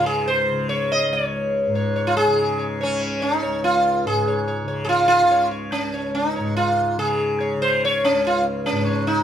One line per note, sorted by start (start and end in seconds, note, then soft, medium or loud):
0.00 1.08 C#2 medium
0.00 1.67 G#2 medium
0.00 0.51 C#3 medium
0.06 0.27 G#4 medium
0.28 0.69 C5 medium
0.51 2.26 C#3 medium
0.69 0.91 C#5 medium
0.92 1.12 D#5 medium
1.08 3.44 C#2 medium
1.13 1.71 C#5 medium
1.67 4.04 G#2 medium
1.75 1.94 C#5 soft
1.96 2.15 C#5 soft
2.07 2.16 F4 medium
2.17 2.65 G#4 loud
2.26 2.85 C#3 medium
2.59 2.78 C#5 soft
2.81 3.25 C#4 medium
2.81 3.00 C#5 soft
2.85 4.64 C#3 medium
3.01 3.19 C#5 soft
3.20 3.64 D#4 medium
3.20 3.40 C#5 soft
3.43 5.81 C#2 medium
3.43 3.62 C#5 soft
3.64 4.07 F4 medium
4.05 6.38 G#2 medium
4.05 4.65 G#4 medium
4.28 4.46 C#5 soft
4.48 4.67 C#5 soft
4.64 5.23 C#3 medium
4.64 4.87 C#5 soft
4.85 4.88 G#4 medium
4.89 5.07 F4 medium
5.08 5.48 F4 medium
5.23 6.97 C#3 medium
5.31 5.50 C#5 soft
5.51 5.71 C#5 soft
5.72 6.15 C#4 medium
5.81 8.12 C#2 medium
5.94 6.13 C#5 soft
6.15 6.56 D#4 medium
6.36 8.71 G#2 medium
6.36 6.55 C#5 soft
6.57 6.99 F4 medium
6.97 7.55 C#3 medium
6.97 7.63 G#4 medium
7.41 7.59 C#5 soft
7.55 9.23 C#3 medium
7.62 7.82 C5 medium
7.85 8.04 C#5 medium
8.05 8.25 C#4 medium
8.12 9.23 C#2 medium
8.27 8.44 F4 medium
8.66 9.08 C#4 medium
8.72 9.23 G#2 medium
8.86 9.05 C#5 soft
9.07 9.23 D#4 medium